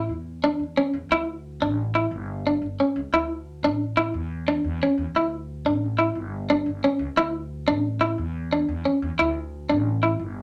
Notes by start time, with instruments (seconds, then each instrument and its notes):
Already playing: clean electric guitar E4
0.09 upright bass E2
0.44 clean electric guitar D4
0.59 upright bass E2
0.77 clean electric guitar C#4
0.93 upright bass E2
1.09 upright bass D2, clean electric guitar E4
1.60 upright bass A1, clean electric guitar D4
1.95 clean electric guitar E4
2.11 upright bass G1
2.47 clean electric guitar D4
2.62 upright bass G1
2.80 clean electric guitar C#4
2.96 upright bass C#2
3.13 upright bass D2, clean electric guitar E4
3.63 upright bass A1, clean electric guitar D4
3.97 clean electric guitar E4
4.14 upright bass E2
4.48 clean electric guitar D4
4.64 upright bass E2
4.83 clean electric guitar C#4
4.98 upright bass E2
5.15 upright bass D2, clean electric guitar E4
5.65 upright bass A1, clean electric guitar D4
5.99 clean electric guitar E4
6.15 upright bass G1
6.50 clean electric guitar D4
6.66 upright bass G1
6.84 clean electric guitar C#4
6.99 upright bass C#2
7.16 upright bass D2, clean electric guitar E4
7.68 upright bass A1, clean electric guitar D4
8.01 clean electric guitar E4
8.18 upright bass E2
8.53 clean electric guitar D4
8.69 upright bass E2
8.85 clean electric guitar C#4
9.02 upright bass E2
9.19 upright bass D2, clean electric guitar E4
9.69 upright bass A1, clean electric guitar D4
10.03 clean electric guitar E4
10.20 upright bass G1